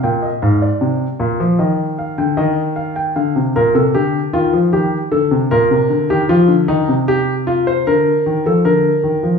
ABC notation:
X:1
M:4/4
L:1/16
Q:1/4=77
K:Eb
V:1 name="Grand piano"
g e f d4- d e2 f g e2 f g | f2 B =A G2 F2 G2 A2 B3 G | F2 E2 G2 F c B3 =A B4 |]
V:2 name="Grand piano" clef=bass
B,,2 A,,2 C,2 B,, F, E,3 D, E,4 | D, C, B,, C, D,2 E, F, E,2 D, C, B,, C, D, E, | F, D, E, C,4- C, D,2 E, F, D,2 E, F, |]